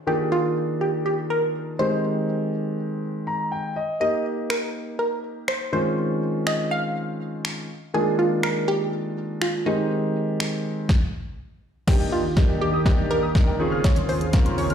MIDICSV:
0, 0, Header, 1, 6, 480
1, 0, Start_track
1, 0, Key_signature, -3, "major"
1, 0, Tempo, 491803
1, 71, Time_signature, 4, 2, 24, 8
1, 14390, End_track
2, 0, Start_track
2, 0, Title_t, "Synth arpeggio sound"
2, 0, Program_c, 0, 84
2, 11590, Note_on_c, 0, 75, 89
2, 11658, Note_off_c, 0, 75, 0
2, 11710, Note_on_c, 0, 79, 71
2, 11778, Note_off_c, 0, 79, 0
2, 12070, Note_on_c, 0, 75, 80
2, 12138, Note_off_c, 0, 75, 0
2, 12190, Note_on_c, 0, 79, 76
2, 12258, Note_off_c, 0, 79, 0
2, 12310, Note_on_c, 0, 86, 88
2, 12378, Note_off_c, 0, 86, 0
2, 12430, Note_on_c, 0, 87, 74
2, 12498, Note_off_c, 0, 87, 0
2, 12790, Note_on_c, 0, 86, 78
2, 12858, Note_off_c, 0, 86, 0
2, 12910, Note_on_c, 0, 87, 77
2, 12978, Note_off_c, 0, 87, 0
2, 13030, Note_on_c, 0, 75, 86
2, 13099, Note_off_c, 0, 75, 0
2, 13150, Note_on_c, 0, 79, 77
2, 13218, Note_off_c, 0, 79, 0
2, 13270, Note_on_c, 0, 85, 81
2, 13338, Note_off_c, 0, 85, 0
2, 13390, Note_on_c, 0, 89, 79
2, 13458, Note_off_c, 0, 89, 0
2, 13510, Note_on_c, 0, 77, 91
2, 13578, Note_off_c, 0, 77, 0
2, 13631, Note_on_c, 0, 84, 73
2, 13699, Note_off_c, 0, 84, 0
2, 13990, Note_on_c, 0, 77, 87
2, 14058, Note_off_c, 0, 77, 0
2, 14110, Note_on_c, 0, 84, 72
2, 14178, Note_off_c, 0, 84, 0
2, 14230, Note_on_c, 0, 85, 91
2, 14299, Note_off_c, 0, 85, 0
2, 14351, Note_on_c, 0, 89, 82
2, 14390, Note_off_c, 0, 89, 0
2, 14390, End_track
3, 0, Start_track
3, 0, Title_t, "Synth pluck"
3, 0, Program_c, 1, 84
3, 73, Note_on_c, 1, 67, 91
3, 312, Note_on_c, 1, 65, 92
3, 319, Note_off_c, 1, 67, 0
3, 792, Note_on_c, 1, 67, 85
3, 806, Note_off_c, 1, 65, 0
3, 1015, Note_off_c, 1, 67, 0
3, 1031, Note_on_c, 1, 67, 92
3, 1272, Note_on_c, 1, 70, 99
3, 1278, Note_off_c, 1, 67, 0
3, 1750, Note_on_c, 1, 72, 99
3, 1766, Note_off_c, 1, 70, 0
3, 2672, Note_off_c, 1, 72, 0
3, 3913, Note_on_c, 1, 75, 92
3, 4391, Note_on_c, 1, 70, 83
3, 4406, Note_off_c, 1, 75, 0
3, 4859, Note_off_c, 1, 70, 0
3, 4870, Note_on_c, 1, 70, 88
3, 5352, Note_on_c, 1, 72, 93
3, 5365, Note_off_c, 1, 70, 0
3, 5580, Note_off_c, 1, 72, 0
3, 5592, Note_on_c, 1, 72, 96
3, 6311, Note_on_c, 1, 75, 101
3, 6333, Note_off_c, 1, 72, 0
3, 6534, Note_off_c, 1, 75, 0
3, 6552, Note_on_c, 1, 77, 95
3, 7472, Note_off_c, 1, 77, 0
3, 7753, Note_on_c, 1, 68, 100
3, 7975, Note_off_c, 1, 68, 0
3, 7992, Note_on_c, 1, 65, 100
3, 8231, Note_on_c, 1, 70, 105
3, 8239, Note_off_c, 1, 65, 0
3, 8471, Note_on_c, 1, 67, 107
3, 8478, Note_off_c, 1, 70, 0
3, 9191, Note_on_c, 1, 65, 88
3, 9213, Note_off_c, 1, 67, 0
3, 9431, Note_on_c, 1, 63, 85
3, 9438, Note_off_c, 1, 65, 0
3, 11072, Note_off_c, 1, 63, 0
3, 11592, Note_on_c, 1, 67, 97
3, 11815, Note_off_c, 1, 67, 0
3, 11833, Note_on_c, 1, 65, 91
3, 12278, Note_off_c, 1, 65, 0
3, 12313, Note_on_c, 1, 67, 96
3, 12535, Note_off_c, 1, 67, 0
3, 12554, Note_on_c, 1, 67, 98
3, 12792, Note_on_c, 1, 70, 102
3, 12800, Note_off_c, 1, 67, 0
3, 13238, Note_off_c, 1, 70, 0
3, 13512, Note_on_c, 1, 73, 89
3, 13752, Note_on_c, 1, 72, 99
3, 13759, Note_off_c, 1, 73, 0
3, 14231, Note_on_c, 1, 73, 91
3, 14246, Note_off_c, 1, 72, 0
3, 14390, Note_off_c, 1, 73, 0
3, 14390, End_track
4, 0, Start_track
4, 0, Title_t, "Grand piano"
4, 0, Program_c, 2, 0
4, 65, Note_on_c, 2, 51, 61
4, 68, Note_on_c, 2, 58, 54
4, 70, Note_on_c, 2, 62, 59
4, 72, Note_on_c, 2, 65, 58
4, 75, Note_on_c, 2, 68, 67
4, 1714, Note_off_c, 2, 51, 0
4, 1716, Note_off_c, 2, 58, 0
4, 1717, Note_off_c, 2, 62, 0
4, 1718, Note_off_c, 2, 65, 0
4, 1719, Note_off_c, 2, 68, 0
4, 1746, Note_on_c, 2, 51, 63
4, 1749, Note_on_c, 2, 56, 56
4, 1751, Note_on_c, 2, 60, 56
4, 1754, Note_on_c, 2, 63, 54
4, 1756, Note_on_c, 2, 67, 67
4, 3192, Note_on_c, 2, 82, 65
4, 3415, Note_off_c, 2, 82, 0
4, 3431, Note_on_c, 2, 79, 63
4, 3630, Note_off_c, 2, 51, 0
4, 3631, Note_off_c, 2, 56, 0
4, 3633, Note_off_c, 2, 60, 0
4, 3634, Note_off_c, 2, 63, 0
4, 3635, Note_off_c, 2, 67, 0
4, 3654, Note_off_c, 2, 79, 0
4, 3671, Note_on_c, 2, 75, 67
4, 3894, Note_off_c, 2, 75, 0
4, 3906, Note_on_c, 2, 58, 64
4, 3913, Note_on_c, 2, 63, 56
4, 3916, Note_on_c, 2, 67, 64
4, 5555, Note_off_c, 2, 58, 0
4, 5558, Note_off_c, 2, 63, 0
4, 5560, Note_off_c, 2, 67, 0
4, 5585, Note_on_c, 2, 51, 60
4, 5588, Note_on_c, 2, 56, 58
4, 5591, Note_on_c, 2, 60, 56
4, 5593, Note_on_c, 2, 61, 57
4, 5595, Note_on_c, 2, 65, 68
4, 7470, Note_off_c, 2, 51, 0
4, 7471, Note_off_c, 2, 56, 0
4, 7472, Note_off_c, 2, 60, 0
4, 7474, Note_off_c, 2, 61, 0
4, 7475, Note_off_c, 2, 65, 0
4, 7747, Note_on_c, 2, 51, 60
4, 7749, Note_on_c, 2, 56, 59
4, 7752, Note_on_c, 2, 58, 59
4, 7754, Note_on_c, 2, 62, 59
4, 7756, Note_on_c, 2, 65, 70
4, 9395, Note_off_c, 2, 51, 0
4, 9396, Note_off_c, 2, 56, 0
4, 9398, Note_off_c, 2, 58, 0
4, 9399, Note_off_c, 2, 62, 0
4, 9400, Note_off_c, 2, 65, 0
4, 9427, Note_on_c, 2, 51, 63
4, 9429, Note_on_c, 2, 56, 59
4, 9432, Note_on_c, 2, 60, 58
4, 9433, Note_on_c, 2, 63, 55
4, 9436, Note_on_c, 2, 67, 69
4, 10605, Note_off_c, 2, 51, 0
4, 10606, Note_off_c, 2, 56, 0
4, 10607, Note_off_c, 2, 60, 0
4, 10608, Note_off_c, 2, 63, 0
4, 10610, Note_off_c, 2, 67, 0
4, 11588, Note_on_c, 2, 58, 71
4, 11590, Note_on_c, 2, 62, 64
4, 11591, Note_on_c, 2, 63, 66
4, 11593, Note_on_c, 2, 67, 77
4, 11931, Note_off_c, 2, 58, 0
4, 11932, Note_off_c, 2, 62, 0
4, 11933, Note_off_c, 2, 63, 0
4, 11934, Note_off_c, 2, 67, 0
4, 12068, Note_on_c, 2, 58, 68
4, 12070, Note_on_c, 2, 62, 64
4, 12072, Note_on_c, 2, 63, 61
4, 12073, Note_on_c, 2, 67, 77
4, 12412, Note_off_c, 2, 58, 0
4, 12412, Note_off_c, 2, 62, 0
4, 12413, Note_off_c, 2, 63, 0
4, 12414, Note_off_c, 2, 67, 0
4, 12547, Note_on_c, 2, 58, 81
4, 12549, Note_on_c, 2, 62, 74
4, 12551, Note_on_c, 2, 63, 79
4, 12552, Note_on_c, 2, 67, 87
4, 12891, Note_off_c, 2, 58, 0
4, 12892, Note_off_c, 2, 62, 0
4, 12893, Note_off_c, 2, 63, 0
4, 12893, Note_off_c, 2, 67, 0
4, 13028, Note_on_c, 2, 58, 74
4, 13029, Note_on_c, 2, 62, 67
4, 13031, Note_on_c, 2, 63, 63
4, 13033, Note_on_c, 2, 70, 83
4, 13267, Note_on_c, 2, 51, 74
4, 13268, Note_on_c, 2, 60, 72
4, 13269, Note_off_c, 2, 58, 0
4, 13270, Note_off_c, 2, 62, 0
4, 13270, Note_on_c, 2, 61, 72
4, 13271, Note_off_c, 2, 63, 0
4, 13271, Note_on_c, 2, 65, 71
4, 13272, Note_off_c, 2, 70, 0
4, 13272, Note_on_c, 2, 68, 89
4, 13845, Note_off_c, 2, 51, 0
4, 13846, Note_off_c, 2, 60, 0
4, 13847, Note_off_c, 2, 61, 0
4, 13847, Note_off_c, 2, 65, 0
4, 13848, Note_off_c, 2, 68, 0
4, 13988, Note_on_c, 2, 51, 83
4, 13989, Note_on_c, 2, 60, 77
4, 13990, Note_on_c, 2, 61, 77
4, 13992, Note_on_c, 2, 65, 76
4, 13993, Note_on_c, 2, 70, 93
4, 14331, Note_off_c, 2, 51, 0
4, 14332, Note_off_c, 2, 60, 0
4, 14332, Note_off_c, 2, 61, 0
4, 14333, Note_off_c, 2, 65, 0
4, 14334, Note_off_c, 2, 70, 0
4, 14390, End_track
5, 0, Start_track
5, 0, Title_t, "Supersaw synth"
5, 0, Program_c, 3, 81
5, 11591, Note_on_c, 3, 39, 80
5, 11591, Note_on_c, 3, 51, 73
5, 11591, Note_on_c, 3, 67, 89
5, 13254, Note_off_c, 3, 39, 0
5, 13254, Note_off_c, 3, 51, 0
5, 13254, Note_off_c, 3, 67, 0
5, 13270, Note_on_c, 3, 39, 77
5, 13270, Note_on_c, 3, 49, 73
5, 13270, Note_on_c, 3, 65, 72
5, 13270, Note_on_c, 3, 68, 86
5, 14390, Note_off_c, 3, 39, 0
5, 14390, Note_off_c, 3, 49, 0
5, 14390, Note_off_c, 3, 65, 0
5, 14390, Note_off_c, 3, 68, 0
5, 14390, End_track
6, 0, Start_track
6, 0, Title_t, "Drums"
6, 4393, Note_on_c, 9, 26, 118
6, 4490, Note_off_c, 9, 26, 0
6, 5349, Note_on_c, 9, 26, 106
6, 5447, Note_off_c, 9, 26, 0
6, 6312, Note_on_c, 9, 26, 112
6, 6410, Note_off_c, 9, 26, 0
6, 7269, Note_on_c, 9, 26, 100
6, 7367, Note_off_c, 9, 26, 0
6, 8231, Note_on_c, 9, 26, 114
6, 8329, Note_off_c, 9, 26, 0
6, 9189, Note_on_c, 9, 26, 106
6, 9287, Note_off_c, 9, 26, 0
6, 10152, Note_on_c, 9, 26, 112
6, 10250, Note_off_c, 9, 26, 0
6, 10630, Note_on_c, 9, 38, 86
6, 10631, Note_on_c, 9, 36, 107
6, 10728, Note_off_c, 9, 36, 0
6, 10728, Note_off_c, 9, 38, 0
6, 11590, Note_on_c, 9, 38, 51
6, 11590, Note_on_c, 9, 49, 92
6, 11591, Note_on_c, 9, 36, 100
6, 11688, Note_off_c, 9, 36, 0
6, 11688, Note_off_c, 9, 38, 0
6, 11688, Note_off_c, 9, 49, 0
6, 12070, Note_on_c, 9, 38, 56
6, 12071, Note_on_c, 9, 36, 103
6, 12167, Note_off_c, 9, 38, 0
6, 12168, Note_off_c, 9, 36, 0
6, 12548, Note_on_c, 9, 36, 114
6, 12550, Note_on_c, 9, 38, 60
6, 12646, Note_off_c, 9, 36, 0
6, 12648, Note_off_c, 9, 38, 0
6, 13030, Note_on_c, 9, 36, 107
6, 13030, Note_on_c, 9, 38, 65
6, 13128, Note_off_c, 9, 36, 0
6, 13128, Note_off_c, 9, 38, 0
6, 13510, Note_on_c, 9, 38, 74
6, 13510, Note_on_c, 9, 42, 69
6, 13511, Note_on_c, 9, 36, 106
6, 13608, Note_off_c, 9, 36, 0
6, 13608, Note_off_c, 9, 38, 0
6, 13608, Note_off_c, 9, 42, 0
6, 13627, Note_on_c, 9, 42, 58
6, 13725, Note_off_c, 9, 42, 0
6, 13751, Note_on_c, 9, 46, 70
6, 13848, Note_off_c, 9, 46, 0
6, 13870, Note_on_c, 9, 42, 50
6, 13967, Note_off_c, 9, 42, 0
6, 13988, Note_on_c, 9, 42, 74
6, 13989, Note_on_c, 9, 38, 75
6, 13991, Note_on_c, 9, 36, 112
6, 14085, Note_off_c, 9, 42, 0
6, 14087, Note_off_c, 9, 38, 0
6, 14088, Note_off_c, 9, 36, 0
6, 14111, Note_on_c, 9, 42, 51
6, 14209, Note_off_c, 9, 42, 0
6, 14229, Note_on_c, 9, 46, 67
6, 14327, Note_off_c, 9, 46, 0
6, 14348, Note_on_c, 9, 42, 45
6, 14390, Note_off_c, 9, 42, 0
6, 14390, End_track
0, 0, End_of_file